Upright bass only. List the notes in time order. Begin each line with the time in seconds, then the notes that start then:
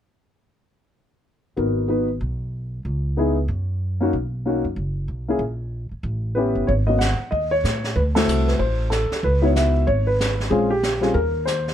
1.57 G#1
2.21 B1
2.85 C#2
3.48 F#2
4.13 B1
4.64 F#2
4.76 F#1
5.08 B1
5.39 A#1
5.91 muted upright bass stroke
6.03 A1
6.55 G1
6.69 G#1
7.20 muted upright bass stroke
7.32 D#2
7.64 A2
7.96 D2
8.27 C2
8.59 A1
9.11 muted upright bass stroke
9.23 C#2
9.87 G#1
10.50 A#1
11.14 D#2